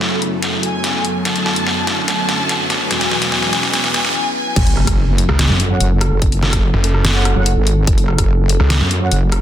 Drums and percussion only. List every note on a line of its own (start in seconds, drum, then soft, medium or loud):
0.01 snare medium
0.22 closed hi-hat medium
0.43 snare medium
0.43 closed hi-hat medium
0.63 closed hi-hat medium
0.84 snare medium
0.84 closed hi-hat medium
1.05 closed hi-hat medium
1.25 snare medium
1.25 closed hi-hat medium
1.36 closed hi-hat medium
1.46 snare medium
1.56 closed hi-hat medium
1.67 snare medium
1.87 snare medium
1.87 closed hi-hat medium
2.08 snare medium
2.08 closed hi-hat medium
2.29 snare medium
2.29 closed hi-hat medium
2.49 snare medium
2.49 closed hi-hat medium
2.70 snare medium
2.70 closed hi-hat medium
2.91 snare medium
2.91 closed hi-hat medium
3.01 snare medium
3.01 closed hi-hat medium
3.11 snare medium
3.22 snare medium
3.22 closed hi-hat medium
3.32 snare loud
3.42 snare medium
3.53 snare loud
3.53 closed hi-hat medium
3.63 snare medium
3.74 snare loud
3.74 closed hi-hat medium
3.84 snare medium
3.94 snare loud
3.94 closed hi-hat medium
4.05 snare loud
4.56 kick loud
4.56 closed hi-hat medium
4.56 crash loud
4.67 closed hi-hat medium
4.77 cross-stick medium
4.87 kick medium
4.87 cross-stick medium
4.87 closed hi-hat medium
5.18 closed hi-hat medium
5.29 cross-stick medium
5.39 snare loud
5.39 closed hi-hat medium
5.60 closed hi-hat medium
5.81 closed hi-hat medium
6.01 cross-stick medium
6.01 closed hi-hat medium
6.22 kick loud
6.22 closed hi-hat medium
6.32 closed hi-hat medium
6.43 cross-stick medium
6.43 snare medium
6.53 kick medium
6.53 cross-stick medium
6.53 closed hi-hat medium
6.84 closed hi-hat medium
6.94 cross-stick medium
7.05 snare loud
7.05 closed hi-hat medium
7.25 cross-stick medium
7.25 closed hi-hat medium
7.46 closed hi-hat medium
7.67 closed hi-hat medium
7.87 kick loud
7.87 closed hi-hat medium
7.98 closed hi-hat medium
8.08 cross-stick medium
8.18 kick medium
8.18 cross-stick medium
8.18 closed hi-hat medium
8.49 closed hi-hat medium
8.60 cross-stick medium
8.70 snare loud
8.70 closed hi-hat medium
8.91 closed hi-hat medium
9.12 closed hi-hat medium
9.32 cross-stick medium
9.32 closed hi-hat medium